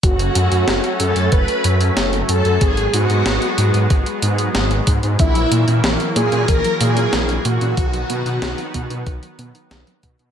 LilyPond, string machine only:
\new Staff \with { instrumentName = "String machine" } { \time 4/4 \key gis \phrygian \tempo 4 = 93 fis'4. a'8 b'4 r8 a'8 | gis'8 fis'2 r4. | e'4 r8 gis'8 ais'8 gis'4 fis'8~ | fis'2. r4 | }